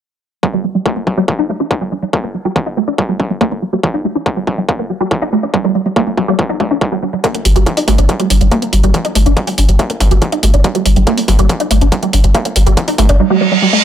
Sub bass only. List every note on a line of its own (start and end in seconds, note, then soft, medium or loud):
7.45 7.55 G1 loud
7.56 7.66 G1 medium
7.88 7.98 G1 medium
7.98 8.09 G1 medium
8.30 8.40 G1 medium
8.41 8.51 G1 medium
8.73 8.83 G1 loud
8.83 8.94 G1 medium
9.15 9.25 G1 loud
9.26 9.36 G1 medium
9.58 9.68 G1 medium
9.69 9.79 G1 medium
10.00 10.11 G1 medium
10.11 10.22 G1 medium
10.43 10.53 G1 loud
10.54 10.64 G1 medium
10.86 10.96 G1 loud
10.96 11.07 G1 medium
11.28 11.38 G1 medium
11.39 11.49 G1 medium
11.71 11.81 G1 loud
11.81 11.92 G1 medium
12.13 12.23 G1 loud
12.24 12.34 G1 medium
12.56 12.66 G1 loud
12.66 12.77 G1 medium
12.98 13.08 G1 medium
13.09 13.19 G1 medium